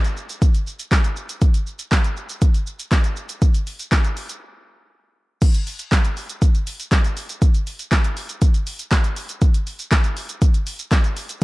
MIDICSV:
0, 0, Header, 1, 2, 480
1, 0, Start_track
1, 0, Tempo, 500000
1, 1361, Time_signature, 4, 2, 24, 8
1, 10981, End_track
2, 0, Start_track
2, 0, Title_t, "Drums"
2, 43, Note_on_c, 9, 42, 51
2, 43, Note_on_c, 9, 82, 52
2, 139, Note_off_c, 9, 42, 0
2, 139, Note_off_c, 9, 82, 0
2, 162, Note_on_c, 9, 82, 44
2, 258, Note_off_c, 9, 82, 0
2, 282, Note_on_c, 9, 42, 53
2, 282, Note_on_c, 9, 82, 76
2, 378, Note_off_c, 9, 42, 0
2, 378, Note_off_c, 9, 82, 0
2, 401, Note_on_c, 9, 36, 117
2, 402, Note_on_c, 9, 42, 79
2, 402, Note_on_c, 9, 82, 80
2, 497, Note_off_c, 9, 36, 0
2, 498, Note_off_c, 9, 42, 0
2, 498, Note_off_c, 9, 82, 0
2, 523, Note_on_c, 9, 42, 48
2, 523, Note_on_c, 9, 82, 47
2, 619, Note_off_c, 9, 42, 0
2, 619, Note_off_c, 9, 82, 0
2, 642, Note_on_c, 9, 82, 67
2, 738, Note_off_c, 9, 82, 0
2, 762, Note_on_c, 9, 42, 53
2, 762, Note_on_c, 9, 82, 72
2, 858, Note_off_c, 9, 42, 0
2, 858, Note_off_c, 9, 82, 0
2, 879, Note_on_c, 9, 36, 107
2, 881, Note_on_c, 9, 42, 74
2, 881, Note_on_c, 9, 82, 73
2, 882, Note_on_c, 9, 39, 103
2, 891, Note_on_c, 9, 38, 84
2, 975, Note_off_c, 9, 36, 0
2, 977, Note_off_c, 9, 42, 0
2, 977, Note_off_c, 9, 82, 0
2, 978, Note_off_c, 9, 39, 0
2, 987, Note_off_c, 9, 38, 0
2, 1001, Note_on_c, 9, 42, 51
2, 1001, Note_on_c, 9, 82, 48
2, 1097, Note_off_c, 9, 42, 0
2, 1097, Note_off_c, 9, 82, 0
2, 1118, Note_on_c, 9, 82, 58
2, 1214, Note_off_c, 9, 82, 0
2, 1241, Note_on_c, 9, 42, 60
2, 1241, Note_on_c, 9, 82, 80
2, 1337, Note_off_c, 9, 42, 0
2, 1337, Note_off_c, 9, 82, 0
2, 1359, Note_on_c, 9, 42, 70
2, 1359, Note_on_c, 9, 82, 73
2, 1360, Note_on_c, 9, 36, 122
2, 1455, Note_off_c, 9, 42, 0
2, 1455, Note_off_c, 9, 82, 0
2, 1456, Note_off_c, 9, 36, 0
2, 1480, Note_on_c, 9, 42, 59
2, 1480, Note_on_c, 9, 82, 57
2, 1576, Note_off_c, 9, 42, 0
2, 1576, Note_off_c, 9, 82, 0
2, 1601, Note_on_c, 9, 82, 46
2, 1697, Note_off_c, 9, 82, 0
2, 1719, Note_on_c, 9, 42, 56
2, 1719, Note_on_c, 9, 82, 75
2, 1815, Note_off_c, 9, 42, 0
2, 1815, Note_off_c, 9, 82, 0
2, 1841, Note_on_c, 9, 36, 111
2, 1842, Note_on_c, 9, 39, 115
2, 1843, Note_on_c, 9, 42, 78
2, 1843, Note_on_c, 9, 82, 79
2, 1851, Note_on_c, 9, 38, 89
2, 1937, Note_off_c, 9, 36, 0
2, 1938, Note_off_c, 9, 39, 0
2, 1939, Note_off_c, 9, 42, 0
2, 1939, Note_off_c, 9, 82, 0
2, 1947, Note_off_c, 9, 38, 0
2, 1962, Note_on_c, 9, 42, 53
2, 1962, Note_on_c, 9, 82, 51
2, 2058, Note_off_c, 9, 42, 0
2, 2058, Note_off_c, 9, 82, 0
2, 2082, Note_on_c, 9, 82, 46
2, 2178, Note_off_c, 9, 82, 0
2, 2202, Note_on_c, 9, 42, 55
2, 2202, Note_on_c, 9, 82, 76
2, 2298, Note_off_c, 9, 42, 0
2, 2298, Note_off_c, 9, 82, 0
2, 2320, Note_on_c, 9, 42, 84
2, 2320, Note_on_c, 9, 82, 82
2, 2321, Note_on_c, 9, 36, 117
2, 2416, Note_off_c, 9, 42, 0
2, 2416, Note_off_c, 9, 82, 0
2, 2417, Note_off_c, 9, 36, 0
2, 2442, Note_on_c, 9, 42, 49
2, 2442, Note_on_c, 9, 82, 48
2, 2538, Note_off_c, 9, 42, 0
2, 2538, Note_off_c, 9, 82, 0
2, 2561, Note_on_c, 9, 82, 67
2, 2657, Note_off_c, 9, 82, 0
2, 2683, Note_on_c, 9, 42, 54
2, 2683, Note_on_c, 9, 82, 71
2, 2779, Note_off_c, 9, 42, 0
2, 2779, Note_off_c, 9, 82, 0
2, 2799, Note_on_c, 9, 42, 74
2, 2799, Note_on_c, 9, 82, 72
2, 2800, Note_on_c, 9, 36, 114
2, 2801, Note_on_c, 9, 39, 103
2, 2810, Note_on_c, 9, 38, 84
2, 2895, Note_off_c, 9, 42, 0
2, 2895, Note_off_c, 9, 82, 0
2, 2896, Note_off_c, 9, 36, 0
2, 2897, Note_off_c, 9, 39, 0
2, 2906, Note_off_c, 9, 38, 0
2, 2919, Note_on_c, 9, 42, 49
2, 2919, Note_on_c, 9, 82, 53
2, 3015, Note_off_c, 9, 42, 0
2, 3015, Note_off_c, 9, 82, 0
2, 3038, Note_on_c, 9, 82, 61
2, 3134, Note_off_c, 9, 82, 0
2, 3160, Note_on_c, 9, 42, 61
2, 3160, Note_on_c, 9, 82, 87
2, 3256, Note_off_c, 9, 42, 0
2, 3256, Note_off_c, 9, 82, 0
2, 3281, Note_on_c, 9, 42, 70
2, 3281, Note_on_c, 9, 82, 71
2, 3282, Note_on_c, 9, 36, 112
2, 3377, Note_off_c, 9, 42, 0
2, 3377, Note_off_c, 9, 82, 0
2, 3378, Note_off_c, 9, 36, 0
2, 3403, Note_on_c, 9, 42, 55
2, 3403, Note_on_c, 9, 82, 59
2, 3499, Note_off_c, 9, 42, 0
2, 3499, Note_off_c, 9, 82, 0
2, 3522, Note_on_c, 9, 46, 67
2, 3522, Note_on_c, 9, 82, 48
2, 3618, Note_off_c, 9, 46, 0
2, 3618, Note_off_c, 9, 82, 0
2, 3642, Note_on_c, 9, 42, 55
2, 3642, Note_on_c, 9, 82, 74
2, 3738, Note_off_c, 9, 42, 0
2, 3738, Note_off_c, 9, 82, 0
2, 3761, Note_on_c, 9, 36, 115
2, 3763, Note_on_c, 9, 39, 113
2, 3764, Note_on_c, 9, 42, 80
2, 3764, Note_on_c, 9, 82, 80
2, 3772, Note_on_c, 9, 38, 92
2, 3857, Note_off_c, 9, 36, 0
2, 3859, Note_off_c, 9, 39, 0
2, 3860, Note_off_c, 9, 42, 0
2, 3860, Note_off_c, 9, 82, 0
2, 3868, Note_off_c, 9, 38, 0
2, 3883, Note_on_c, 9, 42, 54
2, 3883, Note_on_c, 9, 82, 54
2, 3979, Note_off_c, 9, 42, 0
2, 3979, Note_off_c, 9, 82, 0
2, 4001, Note_on_c, 9, 46, 62
2, 4001, Note_on_c, 9, 82, 46
2, 4097, Note_off_c, 9, 46, 0
2, 4097, Note_off_c, 9, 82, 0
2, 4122, Note_on_c, 9, 42, 56
2, 4122, Note_on_c, 9, 82, 78
2, 4218, Note_off_c, 9, 42, 0
2, 4218, Note_off_c, 9, 82, 0
2, 5201, Note_on_c, 9, 42, 75
2, 5201, Note_on_c, 9, 49, 97
2, 5201, Note_on_c, 9, 82, 72
2, 5202, Note_on_c, 9, 36, 120
2, 5297, Note_off_c, 9, 42, 0
2, 5297, Note_off_c, 9, 49, 0
2, 5297, Note_off_c, 9, 82, 0
2, 5298, Note_off_c, 9, 36, 0
2, 5323, Note_on_c, 9, 42, 56
2, 5323, Note_on_c, 9, 82, 57
2, 5419, Note_off_c, 9, 42, 0
2, 5419, Note_off_c, 9, 82, 0
2, 5443, Note_on_c, 9, 46, 69
2, 5443, Note_on_c, 9, 82, 48
2, 5539, Note_off_c, 9, 46, 0
2, 5539, Note_off_c, 9, 82, 0
2, 5561, Note_on_c, 9, 42, 58
2, 5561, Note_on_c, 9, 82, 77
2, 5657, Note_off_c, 9, 42, 0
2, 5657, Note_off_c, 9, 82, 0
2, 5681, Note_on_c, 9, 36, 115
2, 5683, Note_on_c, 9, 39, 114
2, 5684, Note_on_c, 9, 42, 82
2, 5684, Note_on_c, 9, 82, 79
2, 5692, Note_on_c, 9, 38, 92
2, 5777, Note_off_c, 9, 36, 0
2, 5779, Note_off_c, 9, 39, 0
2, 5780, Note_off_c, 9, 42, 0
2, 5780, Note_off_c, 9, 82, 0
2, 5788, Note_off_c, 9, 38, 0
2, 5804, Note_on_c, 9, 42, 55
2, 5804, Note_on_c, 9, 82, 53
2, 5900, Note_off_c, 9, 42, 0
2, 5900, Note_off_c, 9, 82, 0
2, 5922, Note_on_c, 9, 46, 65
2, 5922, Note_on_c, 9, 82, 45
2, 6018, Note_off_c, 9, 46, 0
2, 6018, Note_off_c, 9, 82, 0
2, 6043, Note_on_c, 9, 42, 56
2, 6043, Note_on_c, 9, 82, 77
2, 6139, Note_off_c, 9, 42, 0
2, 6139, Note_off_c, 9, 82, 0
2, 6162, Note_on_c, 9, 36, 120
2, 6163, Note_on_c, 9, 42, 83
2, 6163, Note_on_c, 9, 82, 85
2, 6258, Note_off_c, 9, 36, 0
2, 6259, Note_off_c, 9, 42, 0
2, 6259, Note_off_c, 9, 82, 0
2, 6285, Note_on_c, 9, 42, 47
2, 6285, Note_on_c, 9, 82, 47
2, 6381, Note_off_c, 9, 42, 0
2, 6381, Note_off_c, 9, 82, 0
2, 6403, Note_on_c, 9, 46, 92
2, 6403, Note_on_c, 9, 82, 69
2, 6499, Note_off_c, 9, 46, 0
2, 6499, Note_off_c, 9, 82, 0
2, 6525, Note_on_c, 9, 42, 55
2, 6525, Note_on_c, 9, 82, 76
2, 6621, Note_off_c, 9, 42, 0
2, 6621, Note_off_c, 9, 82, 0
2, 6640, Note_on_c, 9, 36, 113
2, 6642, Note_on_c, 9, 42, 70
2, 6642, Note_on_c, 9, 82, 75
2, 6643, Note_on_c, 9, 39, 108
2, 6652, Note_on_c, 9, 38, 82
2, 6736, Note_off_c, 9, 36, 0
2, 6738, Note_off_c, 9, 42, 0
2, 6738, Note_off_c, 9, 82, 0
2, 6739, Note_off_c, 9, 39, 0
2, 6748, Note_off_c, 9, 38, 0
2, 6763, Note_on_c, 9, 42, 50
2, 6763, Note_on_c, 9, 82, 53
2, 6859, Note_off_c, 9, 42, 0
2, 6859, Note_off_c, 9, 82, 0
2, 6881, Note_on_c, 9, 46, 82
2, 6881, Note_on_c, 9, 82, 58
2, 6977, Note_off_c, 9, 46, 0
2, 6977, Note_off_c, 9, 82, 0
2, 7001, Note_on_c, 9, 42, 60
2, 7001, Note_on_c, 9, 82, 83
2, 7097, Note_off_c, 9, 42, 0
2, 7097, Note_off_c, 9, 82, 0
2, 7121, Note_on_c, 9, 36, 126
2, 7122, Note_on_c, 9, 42, 72
2, 7122, Note_on_c, 9, 82, 72
2, 7217, Note_off_c, 9, 36, 0
2, 7218, Note_off_c, 9, 42, 0
2, 7218, Note_off_c, 9, 82, 0
2, 7243, Note_on_c, 9, 42, 56
2, 7243, Note_on_c, 9, 82, 58
2, 7339, Note_off_c, 9, 42, 0
2, 7339, Note_off_c, 9, 82, 0
2, 7362, Note_on_c, 9, 46, 68
2, 7362, Note_on_c, 9, 82, 51
2, 7458, Note_off_c, 9, 46, 0
2, 7458, Note_off_c, 9, 82, 0
2, 7481, Note_on_c, 9, 42, 54
2, 7481, Note_on_c, 9, 82, 75
2, 7577, Note_off_c, 9, 42, 0
2, 7577, Note_off_c, 9, 82, 0
2, 7601, Note_on_c, 9, 36, 113
2, 7602, Note_on_c, 9, 39, 114
2, 7602, Note_on_c, 9, 42, 82
2, 7602, Note_on_c, 9, 82, 83
2, 7611, Note_on_c, 9, 38, 91
2, 7697, Note_off_c, 9, 36, 0
2, 7698, Note_off_c, 9, 39, 0
2, 7698, Note_off_c, 9, 42, 0
2, 7698, Note_off_c, 9, 82, 0
2, 7707, Note_off_c, 9, 38, 0
2, 7722, Note_on_c, 9, 42, 53
2, 7722, Note_on_c, 9, 82, 53
2, 7818, Note_off_c, 9, 42, 0
2, 7818, Note_off_c, 9, 82, 0
2, 7841, Note_on_c, 9, 46, 63
2, 7841, Note_on_c, 9, 82, 48
2, 7937, Note_off_c, 9, 46, 0
2, 7937, Note_off_c, 9, 82, 0
2, 7960, Note_on_c, 9, 42, 58
2, 7960, Note_on_c, 9, 82, 78
2, 8056, Note_off_c, 9, 42, 0
2, 8056, Note_off_c, 9, 82, 0
2, 8079, Note_on_c, 9, 42, 83
2, 8079, Note_on_c, 9, 82, 84
2, 8081, Note_on_c, 9, 36, 118
2, 8175, Note_off_c, 9, 42, 0
2, 8175, Note_off_c, 9, 82, 0
2, 8177, Note_off_c, 9, 36, 0
2, 8201, Note_on_c, 9, 42, 48
2, 8201, Note_on_c, 9, 82, 50
2, 8297, Note_off_c, 9, 42, 0
2, 8297, Note_off_c, 9, 82, 0
2, 8321, Note_on_c, 9, 46, 97
2, 8321, Note_on_c, 9, 82, 69
2, 8417, Note_off_c, 9, 46, 0
2, 8417, Note_off_c, 9, 82, 0
2, 8441, Note_on_c, 9, 42, 54
2, 8441, Note_on_c, 9, 82, 78
2, 8537, Note_off_c, 9, 42, 0
2, 8537, Note_off_c, 9, 82, 0
2, 8558, Note_on_c, 9, 42, 77
2, 8558, Note_on_c, 9, 82, 75
2, 8559, Note_on_c, 9, 36, 113
2, 8559, Note_on_c, 9, 39, 110
2, 8568, Note_on_c, 9, 38, 87
2, 8654, Note_off_c, 9, 42, 0
2, 8654, Note_off_c, 9, 82, 0
2, 8655, Note_off_c, 9, 36, 0
2, 8655, Note_off_c, 9, 39, 0
2, 8664, Note_off_c, 9, 38, 0
2, 8680, Note_on_c, 9, 42, 51
2, 8680, Note_on_c, 9, 82, 51
2, 8776, Note_off_c, 9, 42, 0
2, 8776, Note_off_c, 9, 82, 0
2, 8797, Note_on_c, 9, 46, 80
2, 8797, Note_on_c, 9, 82, 60
2, 8893, Note_off_c, 9, 46, 0
2, 8893, Note_off_c, 9, 82, 0
2, 8919, Note_on_c, 9, 42, 61
2, 8919, Note_on_c, 9, 82, 88
2, 9015, Note_off_c, 9, 42, 0
2, 9015, Note_off_c, 9, 82, 0
2, 9039, Note_on_c, 9, 42, 73
2, 9039, Note_on_c, 9, 82, 69
2, 9040, Note_on_c, 9, 36, 118
2, 9135, Note_off_c, 9, 42, 0
2, 9135, Note_off_c, 9, 82, 0
2, 9136, Note_off_c, 9, 36, 0
2, 9162, Note_on_c, 9, 42, 59
2, 9162, Note_on_c, 9, 82, 55
2, 9258, Note_off_c, 9, 42, 0
2, 9258, Note_off_c, 9, 82, 0
2, 9281, Note_on_c, 9, 46, 71
2, 9281, Note_on_c, 9, 82, 48
2, 9377, Note_off_c, 9, 46, 0
2, 9377, Note_off_c, 9, 82, 0
2, 9399, Note_on_c, 9, 42, 54
2, 9399, Note_on_c, 9, 82, 78
2, 9495, Note_off_c, 9, 42, 0
2, 9495, Note_off_c, 9, 82, 0
2, 9520, Note_on_c, 9, 36, 113
2, 9520, Note_on_c, 9, 39, 113
2, 9520, Note_on_c, 9, 42, 80
2, 9520, Note_on_c, 9, 82, 81
2, 9529, Note_on_c, 9, 38, 89
2, 9616, Note_off_c, 9, 36, 0
2, 9616, Note_off_c, 9, 39, 0
2, 9616, Note_off_c, 9, 42, 0
2, 9616, Note_off_c, 9, 82, 0
2, 9625, Note_off_c, 9, 38, 0
2, 9639, Note_on_c, 9, 42, 53
2, 9639, Note_on_c, 9, 82, 56
2, 9735, Note_off_c, 9, 42, 0
2, 9735, Note_off_c, 9, 82, 0
2, 9759, Note_on_c, 9, 46, 63
2, 9759, Note_on_c, 9, 82, 46
2, 9855, Note_off_c, 9, 46, 0
2, 9855, Note_off_c, 9, 82, 0
2, 9880, Note_on_c, 9, 42, 56
2, 9880, Note_on_c, 9, 82, 77
2, 9976, Note_off_c, 9, 42, 0
2, 9976, Note_off_c, 9, 82, 0
2, 10000, Note_on_c, 9, 42, 82
2, 10000, Note_on_c, 9, 82, 80
2, 10001, Note_on_c, 9, 36, 117
2, 10096, Note_off_c, 9, 42, 0
2, 10096, Note_off_c, 9, 82, 0
2, 10097, Note_off_c, 9, 36, 0
2, 10121, Note_on_c, 9, 42, 48
2, 10121, Note_on_c, 9, 82, 50
2, 10217, Note_off_c, 9, 42, 0
2, 10217, Note_off_c, 9, 82, 0
2, 10240, Note_on_c, 9, 46, 97
2, 10240, Note_on_c, 9, 82, 68
2, 10336, Note_off_c, 9, 46, 0
2, 10336, Note_off_c, 9, 82, 0
2, 10360, Note_on_c, 9, 42, 54
2, 10360, Note_on_c, 9, 82, 77
2, 10456, Note_off_c, 9, 42, 0
2, 10456, Note_off_c, 9, 82, 0
2, 10479, Note_on_c, 9, 36, 116
2, 10480, Note_on_c, 9, 42, 75
2, 10480, Note_on_c, 9, 82, 75
2, 10481, Note_on_c, 9, 39, 106
2, 10490, Note_on_c, 9, 38, 84
2, 10575, Note_off_c, 9, 36, 0
2, 10576, Note_off_c, 9, 42, 0
2, 10576, Note_off_c, 9, 82, 0
2, 10577, Note_off_c, 9, 39, 0
2, 10586, Note_off_c, 9, 38, 0
2, 10599, Note_on_c, 9, 42, 50
2, 10599, Note_on_c, 9, 82, 50
2, 10695, Note_off_c, 9, 42, 0
2, 10695, Note_off_c, 9, 82, 0
2, 10719, Note_on_c, 9, 46, 83
2, 10719, Note_on_c, 9, 82, 59
2, 10815, Note_off_c, 9, 46, 0
2, 10815, Note_off_c, 9, 82, 0
2, 10841, Note_on_c, 9, 42, 60
2, 10841, Note_on_c, 9, 82, 86
2, 10937, Note_off_c, 9, 42, 0
2, 10937, Note_off_c, 9, 82, 0
2, 10981, End_track
0, 0, End_of_file